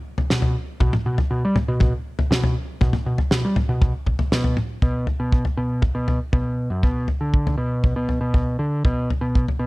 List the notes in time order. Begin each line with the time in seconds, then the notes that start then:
0.18 floor tom
0.30 B2, snare
0.42 floor tom
0.80 B2, kick, floor tom
0.93 mid tom
1.06 B2
1.18 floor tom
1.31 B2
1.45 G3
1.56 floor tom, mid tom
1.68 B2
1.80 kick, floor tom, mid tom
2.19 floor tom
2.31 B2, snare
2.44 floor tom
2.81 B2, kick, floor tom
2.93 floor tom, mid tom
3.06 B2
3.18 floor tom
3.31 B2, snare
3.45 G3
3.56 floor tom, mid tom
3.69 B2
3.82 kick, floor tom
4.06 kick, floor tom
4.19 floor tom
4.32 B2, snare
4.44 floor tom
4.57 mid tom
4.82 B2, kick, floor tom
5.07 floor tom
5.20 B2
5.32 kick
5.45 floor tom
5.57 B2
5.82 kick, floor tom
5.95 B2
6.08 floor tom
6.33 B2, kick, floor tom
6.70 F#2
6.83 B2, kick, floor tom
7.08 floor tom
7.21 D3
7.34 kick
7.47 floor tom
7.58 B2
7.84 kick, floor tom
7.96 B2
8.09 floor tom
8.21 B2
8.34 kick, floor tom
8.59 D3
8.85 B2, kick, floor tom
9.10 floor tom
9.21 B2
9.35 kick
9.48 floor tom
9.59 B2